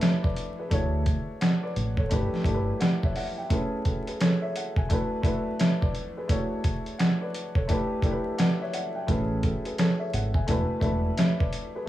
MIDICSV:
0, 0, Header, 1, 5, 480
1, 0, Start_track
1, 0, Tempo, 697674
1, 490, Time_signature, 4, 2, 24, 8
1, 8177, End_track
2, 0, Start_track
2, 0, Title_t, "Upright piano"
2, 0, Program_c, 0, 0
2, 0, Control_c, 0, 64, 127
2, 0, Note_on_c, 0, 57, 98
2, 0, Note_on_c, 0, 62, 83
2, 0, Note_on_c, 0, 64, 74
2, 0, Note_on_c, 0, 66, 84
2, 0, Note_on_c, 0, 71, 97
2, 7, Note_on_c, 0, 76, 65
2, 11, Note_on_c, 0, 73, 60
2, 152, Note_off_c, 0, 76, 0
2, 154, Note_off_c, 0, 73, 0
2, 157, Note_on_c, 0, 74, 75
2, 161, Note_off_c, 0, 71, 0
2, 161, Note_on_c, 0, 71, 57
2, 333, Note_off_c, 0, 57, 0
2, 336, Note_off_c, 0, 62, 0
2, 339, Note_off_c, 0, 64, 0
2, 343, Note_off_c, 0, 66, 0
2, 387, Note_off_c, 0, 74, 0
2, 389, Note_off_c, 0, 71, 0
2, 406, Note_on_c, 0, 71, 66
2, 410, Note_on_c, 0, 68, 54
2, 478, Note_on_c, 0, 57, 82
2, 485, Note_on_c, 0, 62, 82
2, 492, Note_on_c, 0, 64, 77
2, 498, Note_on_c, 0, 66, 77
2, 500, Control_c, 0, 64, 0
2, 505, Note_on_c, 0, 73, 93
2, 627, Control_c, 0, 64, 127
2, 632, Note_off_c, 0, 71, 0
2, 634, Note_off_c, 0, 68, 0
2, 737, Note_off_c, 0, 73, 0
2, 969, Note_on_c, 0, 78, 72
2, 974, Note_on_c, 0, 74, 55
2, 1110, Note_off_c, 0, 74, 0
2, 1113, Note_off_c, 0, 78, 0
2, 1121, Note_on_c, 0, 74, 75
2, 1125, Note_on_c, 0, 71, 61
2, 1226, Note_off_c, 0, 57, 0
2, 1230, Note_off_c, 0, 62, 0
2, 1233, Note_off_c, 0, 64, 0
2, 1236, Note_off_c, 0, 66, 0
2, 1349, Note_off_c, 0, 74, 0
2, 1351, Note_off_c, 0, 71, 0
2, 1362, Note_on_c, 0, 73, 68
2, 1367, Note_on_c, 0, 69, 55
2, 1441, Note_on_c, 0, 57, 94
2, 1448, Note_on_c, 0, 62, 87
2, 1454, Note_on_c, 0, 64, 79
2, 1459, Control_c, 0, 64, 0
2, 1460, Note_on_c, 0, 67, 88
2, 1467, Note_on_c, 0, 71, 101
2, 1573, Control_c, 0, 64, 127
2, 1590, Note_off_c, 0, 73, 0
2, 1592, Note_off_c, 0, 69, 0
2, 1650, Note_off_c, 0, 57, 0
2, 1653, Note_off_c, 0, 62, 0
2, 1656, Note_off_c, 0, 64, 0
2, 1659, Note_off_c, 0, 67, 0
2, 1663, Note_off_c, 0, 71, 0
2, 1679, Note_on_c, 0, 57, 83
2, 1685, Note_on_c, 0, 62, 80
2, 1692, Note_on_c, 0, 64, 83
2, 1698, Note_on_c, 0, 67, 80
2, 1705, Note_on_c, 0, 70, 68
2, 1750, Note_on_c, 0, 71, 91
2, 1754, Note_off_c, 0, 70, 0
2, 1920, Note_off_c, 0, 71, 0
2, 1927, Note_on_c, 0, 74, 72
2, 1927, Note_on_c, 0, 78, 80
2, 1931, Note_on_c, 0, 71, 60
2, 2072, Note_off_c, 0, 74, 0
2, 2074, Note_off_c, 0, 71, 0
2, 2089, Note_on_c, 0, 76, 76
2, 2092, Note_on_c, 0, 73, 61
2, 2152, Note_off_c, 0, 78, 0
2, 2163, Note_off_c, 0, 76, 0
2, 2172, Note_off_c, 0, 73, 0
2, 2173, Note_on_c, 0, 76, 72
2, 2173, Note_on_c, 0, 78, 71
2, 2178, Note_on_c, 0, 74, 58
2, 2256, Note_off_c, 0, 57, 0
2, 2260, Note_off_c, 0, 62, 0
2, 2263, Note_off_c, 0, 64, 0
2, 2266, Note_off_c, 0, 67, 0
2, 2315, Note_off_c, 0, 76, 0
2, 2315, Note_off_c, 0, 78, 0
2, 2317, Note_off_c, 0, 74, 0
2, 2321, Note_on_c, 0, 79, 61
2, 2326, Note_on_c, 0, 76, 52
2, 2402, Note_on_c, 0, 57, 87
2, 2409, Note_on_c, 0, 61, 86
2, 2416, Note_on_c, 0, 64, 72
2, 2419, Control_c, 0, 64, 0
2, 2422, Note_on_c, 0, 68, 77
2, 2429, Note_on_c, 0, 71, 92
2, 2530, Control_c, 0, 64, 127
2, 2549, Note_off_c, 0, 79, 0
2, 2551, Note_off_c, 0, 76, 0
2, 2652, Note_on_c, 0, 69, 58
2, 2656, Note_off_c, 0, 68, 0
2, 2657, Note_on_c, 0, 66, 55
2, 2660, Note_off_c, 0, 71, 0
2, 2794, Note_off_c, 0, 69, 0
2, 2797, Note_off_c, 0, 66, 0
2, 2805, Note_on_c, 0, 71, 63
2, 2809, Note_on_c, 0, 68, 59
2, 2888, Note_off_c, 0, 71, 0
2, 2890, Note_off_c, 0, 68, 0
2, 2897, Note_on_c, 0, 73, 78
2, 2901, Note_on_c, 0, 69, 63
2, 3034, Note_off_c, 0, 73, 0
2, 3039, Note_off_c, 0, 69, 0
2, 3040, Note_on_c, 0, 76, 81
2, 3044, Note_on_c, 0, 73, 60
2, 3125, Note_off_c, 0, 76, 0
2, 3127, Note_off_c, 0, 73, 0
2, 3138, Note_on_c, 0, 78, 63
2, 3149, Note_off_c, 0, 57, 0
2, 3152, Note_off_c, 0, 61, 0
2, 3155, Note_off_c, 0, 64, 0
2, 3277, Note_off_c, 0, 78, 0
2, 3282, Note_on_c, 0, 80, 64
2, 3286, Note_on_c, 0, 76, 56
2, 3363, Note_on_c, 0, 57, 90
2, 3370, Note_on_c, 0, 62, 84
2, 3377, Control_c, 0, 64, 0
2, 3377, Note_on_c, 0, 64, 82
2, 3383, Note_on_c, 0, 66, 86
2, 3390, Note_on_c, 0, 71, 102
2, 3502, Control_c, 0, 64, 127
2, 3510, Note_off_c, 0, 80, 0
2, 3512, Note_off_c, 0, 76, 0
2, 3571, Note_off_c, 0, 57, 0
2, 3574, Note_off_c, 0, 62, 0
2, 3578, Note_off_c, 0, 64, 0
2, 3581, Note_off_c, 0, 66, 0
2, 3584, Note_off_c, 0, 71, 0
2, 3593, Note_on_c, 0, 57, 97
2, 3599, Note_on_c, 0, 62, 82
2, 3606, Note_on_c, 0, 64, 76
2, 3612, Note_on_c, 0, 66, 80
2, 3618, Note_on_c, 0, 71, 98
2, 3848, Note_on_c, 0, 76, 68
2, 3852, Note_on_c, 0, 73, 59
2, 3854, Note_off_c, 0, 71, 0
2, 3992, Note_off_c, 0, 76, 0
2, 3994, Note_off_c, 0, 73, 0
2, 3996, Note_on_c, 0, 74, 74
2, 4001, Note_on_c, 0, 71, 59
2, 4173, Note_off_c, 0, 57, 0
2, 4177, Note_off_c, 0, 62, 0
2, 4180, Note_off_c, 0, 64, 0
2, 4183, Note_off_c, 0, 66, 0
2, 4227, Note_off_c, 0, 74, 0
2, 4229, Note_off_c, 0, 71, 0
2, 4246, Note_on_c, 0, 71, 68
2, 4250, Note_on_c, 0, 68, 55
2, 4318, Note_on_c, 0, 57, 87
2, 4325, Note_on_c, 0, 62, 81
2, 4332, Note_on_c, 0, 64, 78
2, 4338, Note_on_c, 0, 66, 76
2, 4339, Control_c, 0, 64, 0
2, 4345, Note_on_c, 0, 73, 92
2, 4458, Control_c, 0, 64, 127
2, 4472, Note_off_c, 0, 71, 0
2, 4474, Note_off_c, 0, 68, 0
2, 4578, Note_off_c, 0, 73, 0
2, 4806, Note_on_c, 0, 78, 74
2, 4811, Note_on_c, 0, 74, 56
2, 4950, Note_off_c, 0, 74, 0
2, 4951, Note_off_c, 0, 78, 0
2, 4960, Note_on_c, 0, 74, 75
2, 4964, Note_on_c, 0, 71, 62
2, 5067, Note_off_c, 0, 57, 0
2, 5070, Note_off_c, 0, 62, 0
2, 5073, Note_off_c, 0, 64, 0
2, 5076, Note_off_c, 0, 66, 0
2, 5188, Note_off_c, 0, 74, 0
2, 5191, Note_off_c, 0, 71, 0
2, 5201, Note_on_c, 0, 73, 66
2, 5205, Note_on_c, 0, 69, 54
2, 5280, Note_on_c, 0, 57, 96
2, 5287, Note_on_c, 0, 62, 86
2, 5294, Note_on_c, 0, 64, 80
2, 5299, Control_c, 0, 64, 0
2, 5300, Note_on_c, 0, 67, 89
2, 5306, Note_on_c, 0, 71, 104
2, 5410, Control_c, 0, 64, 127
2, 5429, Note_off_c, 0, 73, 0
2, 5431, Note_off_c, 0, 69, 0
2, 5489, Note_off_c, 0, 57, 0
2, 5493, Note_off_c, 0, 62, 0
2, 5496, Note_off_c, 0, 64, 0
2, 5499, Note_off_c, 0, 67, 0
2, 5502, Note_off_c, 0, 71, 0
2, 5516, Note_on_c, 0, 57, 85
2, 5523, Note_on_c, 0, 62, 81
2, 5530, Note_on_c, 0, 64, 84
2, 5536, Note_on_c, 0, 67, 81
2, 5543, Note_on_c, 0, 70, 70
2, 5588, Note_on_c, 0, 71, 89
2, 5593, Note_off_c, 0, 70, 0
2, 5759, Note_off_c, 0, 71, 0
2, 5765, Note_on_c, 0, 74, 71
2, 5765, Note_on_c, 0, 78, 80
2, 5769, Note_on_c, 0, 71, 62
2, 5911, Note_off_c, 0, 74, 0
2, 5913, Note_off_c, 0, 71, 0
2, 5927, Note_on_c, 0, 76, 76
2, 5931, Note_on_c, 0, 73, 66
2, 5991, Note_off_c, 0, 78, 0
2, 6000, Note_off_c, 0, 76, 0
2, 6011, Note_off_c, 0, 73, 0
2, 6011, Note_on_c, 0, 76, 72
2, 6011, Note_on_c, 0, 78, 71
2, 6015, Note_on_c, 0, 74, 55
2, 6095, Note_off_c, 0, 57, 0
2, 6099, Note_off_c, 0, 62, 0
2, 6102, Note_off_c, 0, 64, 0
2, 6105, Note_off_c, 0, 67, 0
2, 6153, Note_off_c, 0, 76, 0
2, 6154, Note_off_c, 0, 78, 0
2, 6156, Note_off_c, 0, 74, 0
2, 6159, Note_on_c, 0, 79, 61
2, 6163, Note_on_c, 0, 76, 55
2, 6240, Note_on_c, 0, 57, 92
2, 6246, Note_on_c, 0, 61, 85
2, 6253, Note_on_c, 0, 64, 73
2, 6259, Control_c, 0, 64, 0
2, 6260, Note_on_c, 0, 68, 76
2, 6266, Note_on_c, 0, 71, 93
2, 6388, Note_off_c, 0, 79, 0
2, 6390, Note_off_c, 0, 76, 0
2, 6390, Control_c, 0, 64, 127
2, 6489, Note_on_c, 0, 69, 60
2, 6493, Note_on_c, 0, 66, 56
2, 6495, Note_off_c, 0, 68, 0
2, 6498, Note_off_c, 0, 71, 0
2, 6633, Note_off_c, 0, 69, 0
2, 6635, Note_off_c, 0, 66, 0
2, 6641, Note_on_c, 0, 71, 62
2, 6645, Note_on_c, 0, 68, 59
2, 6726, Note_off_c, 0, 71, 0
2, 6728, Note_off_c, 0, 68, 0
2, 6732, Note_on_c, 0, 73, 79
2, 6736, Note_on_c, 0, 69, 63
2, 6870, Note_off_c, 0, 73, 0
2, 6875, Note_on_c, 0, 76, 81
2, 6876, Note_off_c, 0, 69, 0
2, 6880, Note_on_c, 0, 73, 59
2, 6963, Note_off_c, 0, 76, 0
2, 6965, Note_off_c, 0, 73, 0
2, 6974, Note_on_c, 0, 78, 66
2, 6987, Note_off_c, 0, 57, 0
2, 6991, Note_off_c, 0, 61, 0
2, 6994, Note_off_c, 0, 64, 0
2, 7116, Note_off_c, 0, 78, 0
2, 7120, Note_on_c, 0, 80, 64
2, 7124, Note_on_c, 0, 76, 57
2, 7202, Note_on_c, 0, 57, 89
2, 7208, Note_on_c, 0, 62, 84
2, 7215, Note_on_c, 0, 64, 83
2, 7220, Control_c, 0, 64, 0
2, 7222, Note_on_c, 0, 66, 87
2, 7228, Note_on_c, 0, 71, 101
2, 7334, Control_c, 0, 64, 127
2, 7348, Note_off_c, 0, 80, 0
2, 7350, Note_off_c, 0, 76, 0
2, 7410, Note_off_c, 0, 57, 0
2, 7413, Note_off_c, 0, 62, 0
2, 7417, Note_off_c, 0, 64, 0
2, 7420, Note_off_c, 0, 66, 0
2, 7423, Note_off_c, 0, 71, 0
2, 7430, Note_on_c, 0, 57, 94
2, 7437, Note_on_c, 0, 62, 81
2, 7443, Note_on_c, 0, 64, 75
2, 7451, Note_on_c, 0, 66, 82
2, 7456, Note_on_c, 0, 71, 99
2, 7687, Note_on_c, 0, 76, 67
2, 7692, Note_on_c, 0, 73, 62
2, 7693, Note_off_c, 0, 71, 0
2, 7832, Note_off_c, 0, 76, 0
2, 7834, Note_off_c, 0, 73, 0
2, 7838, Note_on_c, 0, 74, 73
2, 7841, Note_on_c, 0, 71, 58
2, 8012, Note_off_c, 0, 57, 0
2, 8016, Note_off_c, 0, 62, 0
2, 8019, Note_off_c, 0, 64, 0
2, 8022, Note_off_c, 0, 66, 0
2, 8067, Note_off_c, 0, 74, 0
2, 8069, Note_off_c, 0, 71, 0
2, 8087, Note_on_c, 0, 71, 67
2, 8091, Note_on_c, 0, 68, 57
2, 8177, Note_off_c, 0, 68, 0
2, 8177, Note_off_c, 0, 71, 0
2, 8177, End_track
3, 0, Start_track
3, 0, Title_t, "Fingered electric bass"
3, 0, Program_c, 1, 33
3, 492, Note_on_c, 1, 38, 104
3, 789, Note_off_c, 1, 38, 0
3, 1213, Note_on_c, 1, 33, 84
3, 1395, Note_off_c, 1, 33, 0
3, 1458, Note_on_c, 1, 31, 96
3, 1570, Note_off_c, 1, 31, 0
3, 1682, Note_on_c, 1, 31, 93
3, 1869, Note_off_c, 1, 31, 0
3, 6251, Note_on_c, 1, 33, 106
3, 6549, Note_off_c, 1, 33, 0
3, 6973, Note_on_c, 1, 32, 91
3, 7155, Note_off_c, 1, 32, 0
3, 7217, Note_on_c, 1, 28, 100
3, 7329, Note_off_c, 1, 28, 0
3, 7442, Note_on_c, 1, 28, 89
3, 7628, Note_off_c, 1, 28, 0
3, 8177, End_track
4, 0, Start_track
4, 0, Title_t, "Muted fingered electric bass strokes"
4, 1604, Note_on_c, 9, 29, 47
4, 1673, Note_off_c, 9, 29, 0
4, 8177, End_track
5, 0, Start_track
5, 0, Title_t, "Drums"
5, 10, Note_on_c, 9, 42, 92
5, 18, Note_on_c, 9, 38, 104
5, 79, Note_off_c, 9, 42, 0
5, 87, Note_off_c, 9, 38, 0
5, 167, Note_on_c, 9, 36, 98
5, 236, Note_off_c, 9, 36, 0
5, 251, Note_on_c, 9, 42, 78
5, 320, Note_off_c, 9, 42, 0
5, 490, Note_on_c, 9, 36, 105
5, 490, Note_on_c, 9, 42, 96
5, 559, Note_off_c, 9, 36, 0
5, 559, Note_off_c, 9, 42, 0
5, 729, Note_on_c, 9, 42, 78
5, 732, Note_on_c, 9, 36, 87
5, 798, Note_off_c, 9, 42, 0
5, 800, Note_off_c, 9, 36, 0
5, 972, Note_on_c, 9, 42, 90
5, 978, Note_on_c, 9, 38, 114
5, 1041, Note_off_c, 9, 42, 0
5, 1047, Note_off_c, 9, 38, 0
5, 1213, Note_on_c, 9, 42, 80
5, 1282, Note_off_c, 9, 42, 0
5, 1357, Note_on_c, 9, 36, 92
5, 1426, Note_off_c, 9, 36, 0
5, 1450, Note_on_c, 9, 42, 92
5, 1457, Note_on_c, 9, 36, 96
5, 1519, Note_off_c, 9, 42, 0
5, 1525, Note_off_c, 9, 36, 0
5, 1609, Note_on_c, 9, 38, 37
5, 1678, Note_off_c, 9, 38, 0
5, 1681, Note_on_c, 9, 36, 97
5, 1689, Note_on_c, 9, 42, 75
5, 1750, Note_off_c, 9, 36, 0
5, 1758, Note_off_c, 9, 42, 0
5, 1930, Note_on_c, 9, 42, 90
5, 1938, Note_on_c, 9, 38, 100
5, 1999, Note_off_c, 9, 42, 0
5, 2007, Note_off_c, 9, 38, 0
5, 2087, Note_on_c, 9, 36, 96
5, 2156, Note_off_c, 9, 36, 0
5, 2171, Note_on_c, 9, 46, 54
5, 2240, Note_off_c, 9, 46, 0
5, 2410, Note_on_c, 9, 36, 106
5, 2410, Note_on_c, 9, 42, 99
5, 2479, Note_off_c, 9, 36, 0
5, 2479, Note_off_c, 9, 42, 0
5, 2649, Note_on_c, 9, 42, 77
5, 2652, Note_on_c, 9, 36, 89
5, 2718, Note_off_c, 9, 42, 0
5, 2721, Note_off_c, 9, 36, 0
5, 2803, Note_on_c, 9, 42, 45
5, 2871, Note_off_c, 9, 42, 0
5, 2893, Note_on_c, 9, 42, 93
5, 2899, Note_on_c, 9, 38, 115
5, 2962, Note_off_c, 9, 42, 0
5, 2968, Note_off_c, 9, 38, 0
5, 3134, Note_on_c, 9, 42, 79
5, 3203, Note_off_c, 9, 42, 0
5, 3277, Note_on_c, 9, 36, 92
5, 3346, Note_off_c, 9, 36, 0
5, 3370, Note_on_c, 9, 42, 91
5, 3376, Note_on_c, 9, 36, 99
5, 3439, Note_off_c, 9, 42, 0
5, 3445, Note_off_c, 9, 36, 0
5, 3601, Note_on_c, 9, 36, 102
5, 3609, Note_on_c, 9, 42, 78
5, 3670, Note_off_c, 9, 36, 0
5, 3677, Note_off_c, 9, 42, 0
5, 3849, Note_on_c, 9, 42, 92
5, 3858, Note_on_c, 9, 38, 101
5, 3918, Note_off_c, 9, 42, 0
5, 3927, Note_off_c, 9, 38, 0
5, 4007, Note_on_c, 9, 36, 98
5, 4075, Note_off_c, 9, 36, 0
5, 4091, Note_on_c, 9, 42, 76
5, 4160, Note_off_c, 9, 42, 0
5, 4329, Note_on_c, 9, 42, 96
5, 4330, Note_on_c, 9, 36, 105
5, 4398, Note_off_c, 9, 42, 0
5, 4399, Note_off_c, 9, 36, 0
5, 4569, Note_on_c, 9, 42, 77
5, 4571, Note_on_c, 9, 36, 89
5, 4637, Note_off_c, 9, 42, 0
5, 4640, Note_off_c, 9, 36, 0
5, 4722, Note_on_c, 9, 42, 44
5, 4791, Note_off_c, 9, 42, 0
5, 4812, Note_on_c, 9, 42, 92
5, 4818, Note_on_c, 9, 38, 115
5, 4881, Note_off_c, 9, 42, 0
5, 4887, Note_off_c, 9, 38, 0
5, 5053, Note_on_c, 9, 42, 81
5, 5122, Note_off_c, 9, 42, 0
5, 5196, Note_on_c, 9, 36, 97
5, 5265, Note_off_c, 9, 36, 0
5, 5289, Note_on_c, 9, 42, 94
5, 5296, Note_on_c, 9, 36, 97
5, 5358, Note_off_c, 9, 42, 0
5, 5364, Note_off_c, 9, 36, 0
5, 5521, Note_on_c, 9, 36, 98
5, 5528, Note_on_c, 9, 42, 76
5, 5589, Note_off_c, 9, 36, 0
5, 5597, Note_off_c, 9, 42, 0
5, 5769, Note_on_c, 9, 42, 88
5, 5777, Note_on_c, 9, 38, 103
5, 5838, Note_off_c, 9, 42, 0
5, 5846, Note_off_c, 9, 38, 0
5, 6010, Note_on_c, 9, 42, 79
5, 6079, Note_off_c, 9, 42, 0
5, 6249, Note_on_c, 9, 36, 107
5, 6249, Note_on_c, 9, 42, 92
5, 6318, Note_off_c, 9, 36, 0
5, 6318, Note_off_c, 9, 42, 0
5, 6488, Note_on_c, 9, 42, 77
5, 6491, Note_on_c, 9, 36, 87
5, 6557, Note_off_c, 9, 42, 0
5, 6560, Note_off_c, 9, 36, 0
5, 6642, Note_on_c, 9, 42, 44
5, 6710, Note_off_c, 9, 42, 0
5, 6731, Note_on_c, 9, 42, 93
5, 6737, Note_on_c, 9, 38, 114
5, 6800, Note_off_c, 9, 42, 0
5, 6806, Note_off_c, 9, 38, 0
5, 6973, Note_on_c, 9, 42, 83
5, 7042, Note_off_c, 9, 42, 0
5, 7116, Note_on_c, 9, 36, 98
5, 7185, Note_off_c, 9, 36, 0
5, 7208, Note_on_c, 9, 42, 91
5, 7215, Note_on_c, 9, 36, 96
5, 7277, Note_off_c, 9, 42, 0
5, 7284, Note_off_c, 9, 36, 0
5, 7440, Note_on_c, 9, 36, 99
5, 7447, Note_on_c, 9, 42, 76
5, 7509, Note_off_c, 9, 36, 0
5, 7516, Note_off_c, 9, 42, 0
5, 7688, Note_on_c, 9, 42, 93
5, 7697, Note_on_c, 9, 38, 102
5, 7757, Note_off_c, 9, 42, 0
5, 7766, Note_off_c, 9, 38, 0
5, 7846, Note_on_c, 9, 36, 98
5, 7915, Note_off_c, 9, 36, 0
5, 7930, Note_on_c, 9, 42, 78
5, 7999, Note_off_c, 9, 42, 0
5, 8177, End_track
0, 0, End_of_file